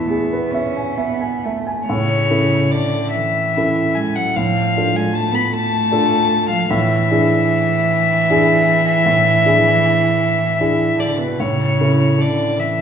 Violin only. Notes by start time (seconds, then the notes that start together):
Already playing: E5
1.87 C#5
2.71 D5
3.11 E5
3.95 G#5
4.15 F#5
4.36 F5
4.96 G#5
5.15 A5
5.35 B5
5.53 A5
6.50 F5
6.69 E5
10.99 D5
11.21 B4
11.40 C#5
12.21 D5
12.60 E5